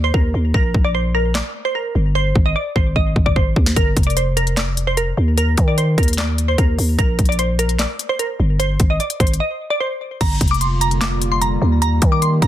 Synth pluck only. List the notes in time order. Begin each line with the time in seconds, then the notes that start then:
0.04 C5
0.14 A#4
0.54 A#4
0.84 D5
0.95 C5
1.15 A#4
1.35 D5
1.65 C5
1.75 A#4
2.15 C5
2.46 D#5
2.56 D5
2.76 C5
2.96 D#5
3.26 D5
3.36 C5
3.76 A#4
4.07 D5
4.17 C5
4.37 A#4
4.57 D5
4.87 C5
4.97 A#4
5.38 A#4
5.68 D5
5.78 C5
5.98 A#4
6.18 D5
6.48 C5
6.58 A#4
6.99 A#4
7.29 D5
7.39 C5
7.59 A#4
7.79 D5
8.09 C5
8.19 A#4
8.60 C5
8.90 D#5
9.00 D5
9.20 C5
9.40 D#5
9.70 D5
9.80 C5
10.21 A#5
10.51 D6
10.61 C6
10.81 A#5
11.01 D6
11.32 C6
11.42 A#5
11.82 A#5
12.12 D6
12.22 C6
12.42 A#5